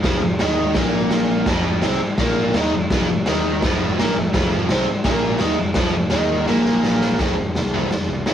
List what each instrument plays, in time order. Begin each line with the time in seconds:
0.03 picked electric bass F1, overdriven electric guitar F2 F3, kick, snare, crash
0.21 picked electric bass F1, overdriven electric guitar F2
0.39 picked electric bass D#2, overdriven electric guitar D#3 D#4, snare, crash
0.75 picked electric bass A#1, overdriven electric guitar A#2 A#3, kick, snare, crash
1.11 snare, crash
1.46 picked electric bass F1, overdriven electric guitar F2 F3, kick, snare, crash
1.82 picked electric bass C2, overdriven electric guitar C3 C4, snare, crash
2.00 muted overdriven electric guitar stroke, muted picked electric bass stroke
2.18 picked electric bass A#1, overdriven electric guitar A#2 A#3, kick, snare, crash
2.54 picked electric bass D#2, overdriven electric guitar D#3 D#4, snare, crash
2.72 picked electric bass F1, overdriven electric guitar F2
2.90 picked electric bass F1, overdriven electric guitar F2 F3, kick, snare, crash
3.09 picked electric bass F1, overdriven electric guitar F2
3.26 picked electric bass D#2, overdriven electric guitar D#3 D#4, snare, crash
3.62 picked electric bass F1, overdriven electric guitar F2 F3, kick, snare, crash
3.99 picked electric bass A#1, overdriven electric guitar A#2 A#3, snare, crash
4.17 picked electric bass F1, overdriven electric guitar F2
4.34 picked electric bass F1, overdriven electric guitar F2 F3, kick, snare, crash
4.69 picked electric bass C2, overdriven electric guitar C3 C4, snare, crash
4.87 muted overdriven electric guitar stroke, muted picked electric bass stroke
5.04 picked electric bass A#1, overdriven electric guitar A#2 A#3, kick, snare, crash
5.39 picked electric bass D#2, overdriven electric guitar D#3 D#4, snare, crash
5.58 picked electric bass F1, overdriven electric guitar F2
5.74 picked electric bass F1, overdriven electric guitar F2 F3, kick, snare, crash
5.93 picked electric bass F1, overdriven electric guitar F2
6.10 picked electric bass D#2, overdriven electric guitar D#3 D#4, snare, crash
6.47 picked electric bass A#1, overdriven electric guitar A#2 A#3, snare
6.65 snare
6.84 snare
7.01 snare
7.19 picked electric bass F1, overdriven electric guitar F2 C3 F3 A3 C4, kick, snare, floor tom
7.37 picked electric bass F1, floor tom
7.55 picked electric bass C2, snare, floor tom
7.74 overdriven electric guitar F2 C3 F3 A3 C4, floor tom
7.91 picked electric bass F1, snare, floor tom
8.09 picked electric bass C2, floor tom
8.26 overdriven electric guitar F2 C3 F3 A3 C4, picked electric bass F2, snare, floor tom